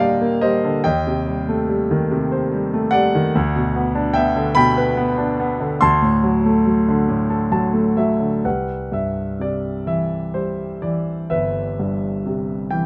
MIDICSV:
0, 0, Header, 1, 2, 480
1, 0, Start_track
1, 0, Tempo, 841515
1, 481, Time_signature, 6, 3, 24, 8
1, 1432, Tempo, 819672
1, 2872, Tempo, 852273
1, 4312, Tempo, 940439
1, 7034, End_track
2, 0, Start_track
2, 0, Title_t, "Grand piano"
2, 0, Program_c, 0, 0
2, 0, Control_c, 0, 64, 127
2, 0, Note_on_c, 0, 39, 45
2, 0, Note_on_c, 0, 46, 48
2, 0, Note_on_c, 0, 50, 45
2, 0, Note_on_c, 0, 55, 49
2, 0, Note_on_c, 0, 58, 46
2, 0, Note_on_c, 0, 70, 45
2, 0, Note_on_c, 0, 74, 48
2, 0, Note_on_c, 0, 75, 58
2, 0, Note_on_c, 0, 77, 73
2, 0, Note_on_c, 0, 79, 68
2, 0, Note_on_c, 0, 81, 80
2, 111, Note_off_c, 0, 58, 0
2, 120, Note_on_c, 0, 58, 49
2, 222, Note_off_c, 0, 74, 0
2, 236, Note_off_c, 0, 75, 0
2, 236, Note_on_c, 0, 75, 65
2, 237, Note_off_c, 0, 55, 0
2, 240, Note_on_c, 0, 72, 51
2, 245, Note_on_c, 0, 55, 48
2, 246, Note_off_c, 0, 77, 0
2, 359, Note_off_c, 0, 50, 0
2, 368, Note_on_c, 0, 50, 47
2, 460, Note_off_c, 0, 46, 0
2, 461, Note_off_c, 0, 39, 0
2, 463, Note_off_c, 0, 70, 0
2, 464, Note_off_c, 0, 72, 0
2, 472, Note_off_c, 0, 58, 0
2, 473, Note_off_c, 0, 75, 0
2, 477, Note_off_c, 0, 55, 0
2, 478, Note_off_c, 0, 79, 0
2, 478, Note_on_c, 0, 79, 71
2, 481, Note_off_c, 0, 50, 0
2, 482, Note_on_c, 0, 75, 53
2, 485, Note_on_c, 0, 39, 53
2, 487, Control_c, 0, 64, 0
2, 492, Note_off_c, 0, 81, 0
2, 585, Control_c, 0, 64, 127
2, 609, Note_on_c, 0, 48, 44
2, 724, Note_on_c, 0, 55, 43
2, 847, Note_on_c, 0, 57, 47
2, 955, Note_off_c, 0, 55, 0
2, 964, Note_on_c, 0, 55, 45
2, 1089, Note_on_c, 0, 51, 51
2, 1196, Note_off_c, 0, 48, 0
2, 1205, Note_on_c, 0, 48, 54
2, 1323, Note_on_c, 0, 72, 44
2, 1409, Note_off_c, 0, 79, 0
2, 1411, Note_off_c, 0, 75, 0
2, 1429, Note_off_c, 0, 55, 0
2, 1438, Note_on_c, 0, 55, 53
2, 1555, Note_off_c, 0, 57, 0
2, 1563, Note_on_c, 0, 57, 53
2, 1665, Note_on_c, 0, 78, 78
2, 1676, Note_off_c, 0, 55, 0
2, 1676, Note_on_c, 0, 74, 56
2, 1685, Note_on_c, 0, 55, 52
2, 1798, Note_off_c, 0, 51, 0
2, 1807, Note_on_c, 0, 51, 53
2, 1894, Note_off_c, 0, 39, 0
2, 1898, Note_off_c, 0, 48, 0
2, 1901, Note_off_c, 0, 72, 0
2, 1909, Note_off_c, 0, 57, 0
2, 1913, Note_off_c, 0, 55, 0
2, 1918, Note_off_c, 0, 51, 0
2, 1924, Control_c, 0, 64, 0
2, 1925, Note_on_c, 0, 38, 62
2, 2027, Control_c, 0, 64, 127
2, 2046, Note_on_c, 0, 47, 54
2, 2163, Note_on_c, 0, 59, 51
2, 2277, Note_on_c, 0, 62, 57
2, 2371, Note_off_c, 0, 74, 0
2, 2383, Note_on_c, 0, 79, 77
2, 2392, Note_off_c, 0, 59, 0
2, 2393, Note_on_c, 0, 76, 61
2, 2400, Note_on_c, 0, 59, 54
2, 2411, Note_off_c, 0, 78, 0
2, 2515, Note_on_c, 0, 50, 54
2, 2611, Note_off_c, 0, 79, 0
2, 2616, Note_off_c, 0, 76, 0
2, 2624, Note_on_c, 0, 83, 94
2, 2625, Note_off_c, 0, 47, 0
2, 2633, Note_on_c, 0, 47, 69
2, 2637, Note_on_c, 0, 79, 73
2, 2757, Note_on_c, 0, 71, 57
2, 2864, Note_off_c, 0, 59, 0
2, 2873, Note_on_c, 0, 59, 61
2, 2981, Note_off_c, 0, 62, 0
2, 2989, Note_on_c, 0, 62, 52
2, 3105, Note_off_c, 0, 59, 0
2, 3114, Note_on_c, 0, 59, 59
2, 3220, Note_off_c, 0, 50, 0
2, 3228, Note_on_c, 0, 50, 49
2, 3326, Note_off_c, 0, 47, 0
2, 3326, Note_off_c, 0, 79, 0
2, 3329, Note_off_c, 0, 38, 0
2, 3331, Note_off_c, 0, 71, 0
2, 3335, Note_off_c, 0, 62, 0
2, 3342, Note_off_c, 0, 59, 0
2, 3343, Note_on_c, 0, 84, 85
2, 3344, Note_off_c, 0, 50, 0
2, 3349, Note_on_c, 0, 38, 63
2, 3351, Note_on_c, 0, 81, 68
2, 3354, Control_c, 0, 64, 0
2, 3364, Note_off_c, 0, 83, 0
2, 3457, Control_c, 0, 64, 127
2, 3465, Note_on_c, 0, 45, 47
2, 3584, Note_on_c, 0, 54, 47
2, 3705, Note_on_c, 0, 57, 47
2, 3817, Note_off_c, 0, 54, 0
2, 3825, Note_on_c, 0, 54, 41
2, 3951, Note_on_c, 0, 50, 49
2, 4055, Note_off_c, 0, 45, 0
2, 4063, Note_on_c, 0, 45, 55
2, 4183, Note_on_c, 0, 69, 45
2, 4297, Note_off_c, 0, 54, 0
2, 4300, Note_off_c, 0, 81, 0
2, 4305, Note_on_c, 0, 54, 45
2, 4308, Note_on_c, 0, 81, 54
2, 4410, Note_off_c, 0, 57, 0
2, 4418, Note_on_c, 0, 57, 40
2, 4521, Note_off_c, 0, 84, 0
2, 4525, Note_off_c, 0, 81, 0
2, 4534, Note_off_c, 0, 54, 0
2, 4538, Note_on_c, 0, 76, 48
2, 4541, Note_on_c, 0, 54, 40
2, 4648, Note_off_c, 0, 50, 0
2, 4656, Note_on_c, 0, 50, 35
2, 4761, Note_off_c, 0, 45, 0
2, 4763, Note_off_c, 0, 69, 0
2, 4764, Note_off_c, 0, 38, 0
2, 4764, Note_off_c, 0, 76, 0
2, 4768, Note_off_c, 0, 57, 0
2, 4775, Note_off_c, 0, 54, 0
2, 4776, Note_off_c, 0, 50, 0
2, 4782, Note_on_c, 0, 71, 30
2, 4783, Note_on_c, 0, 36, 32
2, 4784, Note_on_c, 0, 78, 42
2, 4790, Control_c, 0, 64, 0
2, 4888, Control_c, 0, 64, 127
2, 5023, Note_on_c, 0, 43, 25
2, 5029, Note_on_c, 0, 76, 41
2, 5035, Note_off_c, 0, 78, 0
2, 5265, Note_on_c, 0, 48, 28
2, 5276, Note_on_c, 0, 74, 42
2, 5277, Note_off_c, 0, 76, 0
2, 5488, Note_off_c, 0, 71, 0
2, 5506, Note_on_c, 0, 52, 32
2, 5509, Note_on_c, 0, 76, 46
2, 5519, Note_off_c, 0, 74, 0
2, 5733, Note_off_c, 0, 76, 0
2, 5748, Note_on_c, 0, 55, 33
2, 5748, Note_on_c, 0, 72, 42
2, 5970, Note_off_c, 0, 43, 0
2, 5986, Note_off_c, 0, 52, 0
2, 5993, Note_on_c, 0, 74, 41
2, 5994, Note_on_c, 0, 52, 32
2, 5999, Note_off_c, 0, 72, 0
2, 6216, Note_off_c, 0, 48, 0
2, 6218, Note_off_c, 0, 36, 0
2, 6238, Note_on_c, 0, 76, 52
2, 6242, Note_on_c, 0, 71, 38
2, 6244, Note_on_c, 0, 31, 35
2, 6246, Note_off_c, 0, 74, 0
2, 6491, Note_on_c, 0, 43, 31
2, 6702, Note_off_c, 0, 55, 0
2, 6725, Note_on_c, 0, 48, 33
2, 6936, Note_off_c, 0, 76, 0
2, 6937, Note_off_c, 0, 52, 0
2, 6938, Note_off_c, 0, 71, 0
2, 6955, Note_on_c, 0, 79, 54
2, 6963, Note_on_c, 0, 52, 35
2, 7034, Note_off_c, 0, 31, 0
2, 7034, Note_off_c, 0, 43, 0
2, 7034, Note_off_c, 0, 48, 0
2, 7034, Note_off_c, 0, 52, 0
2, 7034, Note_off_c, 0, 79, 0
2, 7034, End_track
0, 0, End_of_file